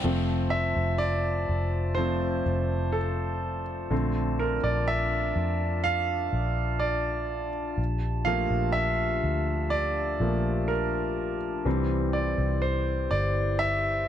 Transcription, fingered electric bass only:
0, 0, Header, 1, 2, 480
1, 0, Start_track
1, 0, Key_signature, -1, "major"
1, 0, Tempo, 967742
1, 22, Time_signature, 4, 2, 24, 8
1, 6984, End_track
2, 0, Start_track
2, 0, Title_t, "Fingered electric bass"
2, 0, Program_c, 0, 33
2, 20, Note_on_c, 0, 29, 94
2, 361, Note_off_c, 0, 29, 0
2, 379, Note_on_c, 0, 29, 87
2, 720, Note_off_c, 0, 29, 0
2, 740, Note_on_c, 0, 29, 94
2, 1201, Note_off_c, 0, 29, 0
2, 1220, Note_on_c, 0, 29, 89
2, 1921, Note_off_c, 0, 29, 0
2, 1938, Note_on_c, 0, 34, 93
2, 2280, Note_off_c, 0, 34, 0
2, 2300, Note_on_c, 0, 34, 89
2, 2641, Note_off_c, 0, 34, 0
2, 2657, Note_on_c, 0, 41, 96
2, 3120, Note_off_c, 0, 41, 0
2, 3138, Note_on_c, 0, 34, 90
2, 3840, Note_off_c, 0, 34, 0
2, 3857, Note_on_c, 0, 34, 97
2, 4200, Note_off_c, 0, 34, 0
2, 4219, Note_on_c, 0, 34, 92
2, 4561, Note_off_c, 0, 34, 0
2, 4581, Note_on_c, 0, 38, 92
2, 5041, Note_off_c, 0, 38, 0
2, 5059, Note_on_c, 0, 34, 85
2, 5761, Note_off_c, 0, 34, 0
2, 5782, Note_on_c, 0, 36, 96
2, 6122, Note_off_c, 0, 36, 0
2, 6141, Note_on_c, 0, 36, 89
2, 6482, Note_off_c, 0, 36, 0
2, 6504, Note_on_c, 0, 31, 85
2, 6963, Note_off_c, 0, 31, 0
2, 6984, End_track
0, 0, End_of_file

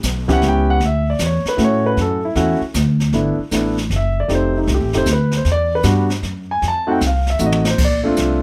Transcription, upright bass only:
0, 0, Header, 1, 3, 480
1, 0, Start_track
1, 0, Key_signature, 2, "major"
1, 0, Tempo, 387597
1, 1003, Time_signature, 3, 2, 24, 8
1, 3880, Key_signature, 1, "major"
1, 10432, End_track
2, 0, Start_track
2, 0, Title_t, "Upright bass"
2, 0, Program_c, 0, 32
2, 40, Note_on_c, 0, 35, 87
2, 507, Note_off_c, 0, 35, 0
2, 518, Note_on_c, 0, 37, 84
2, 985, Note_off_c, 0, 37, 0
2, 991, Note_on_c, 0, 38, 81
2, 1462, Note_off_c, 0, 38, 0
2, 1476, Note_on_c, 0, 40, 95
2, 1774, Note_off_c, 0, 40, 0
2, 1957, Note_on_c, 0, 45, 92
2, 2424, Note_off_c, 0, 45, 0
2, 2438, Note_on_c, 0, 42, 85
2, 2904, Note_off_c, 0, 42, 0
2, 2916, Note_on_c, 0, 40, 98
2, 3214, Note_off_c, 0, 40, 0
2, 3395, Note_on_c, 0, 38, 89
2, 3863, Note_off_c, 0, 38, 0
2, 3869, Note_on_c, 0, 31, 75
2, 4169, Note_off_c, 0, 31, 0
2, 4353, Note_on_c, 0, 33, 84
2, 4822, Note_off_c, 0, 33, 0
2, 4832, Note_on_c, 0, 30, 82
2, 5301, Note_off_c, 0, 30, 0
2, 5307, Note_on_c, 0, 29, 75
2, 5779, Note_off_c, 0, 29, 0
2, 5790, Note_on_c, 0, 36, 89
2, 5942, Note_off_c, 0, 36, 0
2, 5942, Note_on_c, 0, 33, 59
2, 6111, Note_off_c, 0, 33, 0
2, 6117, Note_on_c, 0, 29, 62
2, 6259, Note_off_c, 0, 29, 0
2, 6266, Note_on_c, 0, 38, 83
2, 6739, Note_off_c, 0, 38, 0
2, 6746, Note_on_c, 0, 40, 76
2, 7219, Note_off_c, 0, 40, 0
2, 7226, Note_on_c, 0, 43, 91
2, 7698, Note_off_c, 0, 43, 0
2, 7707, Note_on_c, 0, 42, 79
2, 8179, Note_off_c, 0, 42, 0
2, 8197, Note_on_c, 0, 41, 80
2, 8664, Note_off_c, 0, 41, 0
2, 8676, Note_on_c, 0, 36, 84
2, 9144, Note_off_c, 0, 36, 0
2, 9155, Note_on_c, 0, 33, 85
2, 9623, Note_off_c, 0, 33, 0
2, 9637, Note_on_c, 0, 34, 73
2, 10104, Note_off_c, 0, 34, 0
2, 10116, Note_on_c, 0, 36, 83
2, 10432, Note_off_c, 0, 36, 0
2, 10432, End_track
3, 0, Start_track
3, 0, Title_t, "Muted upright bass strokes"
3, 1791, Note_on_c, 9, 29, 40
3, 1915, Note_off_c, 9, 29, 0
3, 3228, Note_on_c, 9, 29, 39
3, 3352, Note_off_c, 9, 29, 0
3, 4186, Note_on_c, 9, 29, 38
3, 4310, Note_off_c, 9, 29, 0
3, 10432, End_track
0, 0, End_of_file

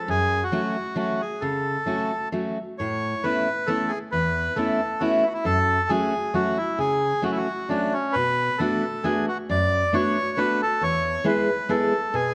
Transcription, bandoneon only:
0, 0, Header, 1, 2, 480
1, 0, Start_track
1, 0, Key_signature, 3, "major"
1, 0, Tempo, 447761
1, 90, Time_signature, 3, 2, 24, 8
1, 10171, Tempo, 441501
1, 13272, End_track
2, 0, Start_track
2, 0, Title_t, "Bandoneon"
2, 0, Program_c, 0, 23
2, 103, Note_on_c, 0, 68, 105
2, 467, Note_on_c, 0, 66, 79
2, 470, Note_off_c, 0, 68, 0
2, 1035, Note_off_c, 0, 66, 0
2, 1051, Note_on_c, 0, 66, 72
2, 1299, Note_on_c, 0, 68, 85
2, 1302, Note_off_c, 0, 66, 0
2, 1512, Note_on_c, 0, 69, 81
2, 1531, Note_off_c, 0, 68, 0
2, 2450, Note_off_c, 0, 69, 0
2, 2983, Note_on_c, 0, 73, 90
2, 3469, Note_on_c, 0, 71, 89
2, 3483, Note_off_c, 0, 73, 0
2, 3930, Note_on_c, 0, 69, 89
2, 3961, Note_off_c, 0, 71, 0
2, 4165, Note_on_c, 0, 68, 89
2, 4193, Note_off_c, 0, 69, 0
2, 4274, Note_off_c, 0, 68, 0
2, 4413, Note_on_c, 0, 71, 99
2, 4888, Note_on_c, 0, 69, 79
2, 4904, Note_off_c, 0, 71, 0
2, 5360, Note_on_c, 0, 66, 81
2, 5377, Note_off_c, 0, 69, 0
2, 5605, Note_on_c, 0, 64, 78
2, 5617, Note_off_c, 0, 66, 0
2, 5649, Note_on_c, 0, 66, 68
2, 5667, Note_off_c, 0, 64, 0
2, 5716, Note_off_c, 0, 66, 0
2, 5718, Note_on_c, 0, 64, 78
2, 5839, Note_off_c, 0, 64, 0
2, 5840, Note_on_c, 0, 69, 106
2, 6314, Note_on_c, 0, 68, 87
2, 6330, Note_off_c, 0, 69, 0
2, 6799, Note_on_c, 0, 66, 83
2, 6805, Note_off_c, 0, 68, 0
2, 7046, Note_on_c, 0, 64, 86
2, 7052, Note_off_c, 0, 66, 0
2, 7279, Note_off_c, 0, 64, 0
2, 7280, Note_on_c, 0, 68, 103
2, 7768, Note_on_c, 0, 66, 69
2, 7770, Note_off_c, 0, 68, 0
2, 7840, Note_off_c, 0, 66, 0
2, 7843, Note_on_c, 0, 64, 66
2, 7901, Note_on_c, 0, 66, 80
2, 7915, Note_off_c, 0, 64, 0
2, 8245, Note_on_c, 0, 62, 79
2, 8246, Note_off_c, 0, 66, 0
2, 8500, Note_on_c, 0, 61, 81
2, 8506, Note_off_c, 0, 62, 0
2, 8711, Note_on_c, 0, 71, 103
2, 8738, Note_off_c, 0, 61, 0
2, 9200, Note_on_c, 0, 69, 85
2, 9217, Note_off_c, 0, 71, 0
2, 9688, Note_on_c, 0, 68, 94
2, 9700, Note_off_c, 0, 69, 0
2, 9924, Note_off_c, 0, 68, 0
2, 9950, Note_on_c, 0, 66, 86
2, 10052, Note_off_c, 0, 66, 0
2, 10185, Note_on_c, 0, 74, 114
2, 10664, Note_on_c, 0, 73, 98
2, 10675, Note_off_c, 0, 74, 0
2, 11136, Note_on_c, 0, 71, 94
2, 11153, Note_off_c, 0, 73, 0
2, 11393, Note_off_c, 0, 71, 0
2, 11403, Note_on_c, 0, 69, 94
2, 11627, Note_on_c, 0, 73, 112
2, 11628, Note_off_c, 0, 69, 0
2, 12112, Note_off_c, 0, 73, 0
2, 12115, Note_on_c, 0, 71, 88
2, 12573, Note_on_c, 0, 69, 82
2, 12598, Note_off_c, 0, 71, 0
2, 13059, Note_on_c, 0, 68, 100
2, 13068, Note_off_c, 0, 69, 0
2, 13272, Note_off_c, 0, 68, 0
2, 13272, End_track
0, 0, End_of_file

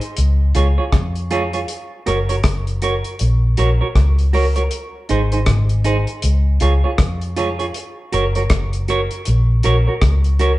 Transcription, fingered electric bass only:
0, 0, Header, 1, 2, 480
1, 0, Start_track
1, 0, Tempo, 758150
1, 1064, Time_signature, 4, 2, 24, 8
1, 6703, End_track
2, 0, Start_track
2, 0, Title_t, "Fingered electric bass"
2, 0, Program_c, 0, 33
2, 115, Note_on_c, 0, 37, 90
2, 335, Note_off_c, 0, 37, 0
2, 356, Note_on_c, 0, 37, 90
2, 487, Note_off_c, 0, 37, 0
2, 592, Note_on_c, 0, 41, 79
2, 1042, Note_off_c, 0, 41, 0
2, 1314, Note_on_c, 0, 30, 79
2, 1535, Note_off_c, 0, 30, 0
2, 1549, Note_on_c, 0, 30, 80
2, 1909, Note_off_c, 0, 30, 0
2, 2032, Note_on_c, 0, 34, 89
2, 2254, Note_off_c, 0, 34, 0
2, 2272, Note_on_c, 0, 34, 82
2, 2404, Note_off_c, 0, 34, 0
2, 2508, Note_on_c, 0, 37, 83
2, 2960, Note_off_c, 0, 37, 0
2, 3231, Note_on_c, 0, 32, 90
2, 3453, Note_off_c, 0, 32, 0
2, 3467, Note_on_c, 0, 32, 88
2, 3827, Note_off_c, 0, 32, 0
2, 3949, Note_on_c, 0, 37, 88
2, 4171, Note_off_c, 0, 37, 0
2, 4191, Note_on_c, 0, 37, 86
2, 4323, Note_off_c, 0, 37, 0
2, 4427, Note_on_c, 0, 41, 82
2, 4879, Note_off_c, 0, 41, 0
2, 5152, Note_on_c, 0, 30, 87
2, 5373, Note_off_c, 0, 30, 0
2, 5386, Note_on_c, 0, 30, 82
2, 5746, Note_off_c, 0, 30, 0
2, 5874, Note_on_c, 0, 34, 91
2, 6094, Note_off_c, 0, 34, 0
2, 6113, Note_on_c, 0, 34, 74
2, 6244, Note_off_c, 0, 34, 0
2, 6348, Note_on_c, 0, 37, 95
2, 6703, Note_off_c, 0, 37, 0
2, 6703, End_track
0, 0, End_of_file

